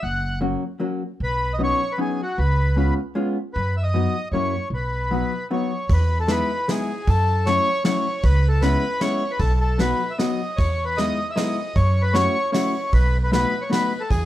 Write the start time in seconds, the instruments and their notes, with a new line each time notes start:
0.03 upright bass F#1, accordion F#5
0.41 hollow-body jazz guitar F#3 A#3 C#4 F#4
0.80 hollow-body jazz guitar F#3 A#3 C#4 F#4
1.20 upright bass B1, accordion B4
1.53 accordion D#5
1.59 hollow-body jazz guitar F#3 B3 C#4 D#4
1.64 accordion C#5
1.92 accordion B4
1.98 hollow-body jazz guitar F#3 B3 C#4 D#4, accordion G#4
2.22 accordion F#4
2.38 upright bass C#2, accordion B4
2.76 hollow-body jazz guitar G#3 B3 C#4 F4
3.15 hollow-body jazz guitar G#3 B3 C#4 F4
3.54 upright bass F#2, accordion B4
3.77 accordion E5
3.83 accordion D#5
3.94 hollow-body jazz guitar F#3 B3 D#4 F#4
4.32 upright bass F#2, hollow-body jazz guitar F#3 A#3 C#4 E4, accordion C#5
4.70 upright bass B1
4.74 accordion B4
5.11 hollow-body jazz guitar F#3 B3 D#4 F#4
5.51 hollow-body jazz guitar F#3 B3 D#4 F#4, accordion C#5
5.89 upright bass E2, accordion B4, kick, ride
6.20 accordion A4
6.28 hollow-body jazz guitar G#3 B3 D#4 E4, accordion B4, snare, ride
6.68 hollow-body jazz guitar G#3 B3 D#4 E4, accordion G#4, snare, ride
7.07 upright bass F#2, accordion A4, kick, ride
7.46 hollow-body jazz guitar F#3 A3 C#4 E4, accordion C#5, snare, ride
7.84 hollow-body jazz guitar F#3 A3 C#4 E4, accordion C#5, snare, ride
8.23 upright bass C#2, accordion B4, kick, ride
8.49 accordion A4
8.61 hollow-body jazz guitar G#3 B3 C#4 E4, accordion B4, snare, ride
9.01 hollow-body jazz guitar G#3 B3 C#4 E4, accordion C#5, snare, ride
9.31 accordion B4
9.39 upright bass B1, accordion A4, kick, ride
9.61 accordion A4
9.79 hollow-body jazz guitar F#3 B3 D#4 F#4, accordion B4, snare, ride
10.10 accordion E5
10.18 hollow-body jazz guitar F#3 B3 D#4 F#4, accordion D#5, snare, ride
10.56 upright bass E2, accordion C#5, kick, ride
10.85 accordion B4
10.97 hollow-body jazz guitar G#3 B3 D#4 E4, accordion D#5, snare, ride
11.31 accordion E5
11.36 hollow-body jazz guitar G#3 B3 D#4 E4, accordion D#5, snare, ride
11.76 upright bass F#2, accordion C#5, kick, ride
12.02 accordion B4
12.13 hollow-body jazz guitar A3 C#4 E4 F#4, accordion C#5, snare, ride
12.52 hollow-body jazz guitar A3 C#4 E4 F#4, accordion C#5, snare, ride
12.93 upright bass B1, accordion B4, kick, ride
13.24 accordion B4
13.32 hollow-body jazz guitar A3 B3 D#4 F#4, accordion B4, snare, ride
13.62 accordion C#5
13.70 hollow-body jazz guitar A3 B3 D#4 F#4, accordion B4, snare, ride
14.00 accordion A4
14.10 upright bass E2, accordion G#4, kick, ride